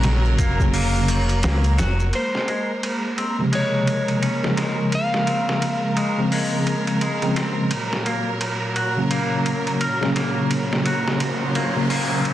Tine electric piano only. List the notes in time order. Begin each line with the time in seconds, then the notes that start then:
Already playing: C#3 F#3 A#3 C#4
0.60 C#3 F#3 A#3 C#4
3.38 C3 C#3 F3 G#3
4.43 C#3 F3 G#3 A#4
6.17 C#3 F3 G#3 C4
7.22 C#3 F3 G#3 C4
8.96 C#3 F#3 A#3 C#4
10.00 C#3 F#3 A#3 C#4
11.76 C#3 F#3 A#3 C#4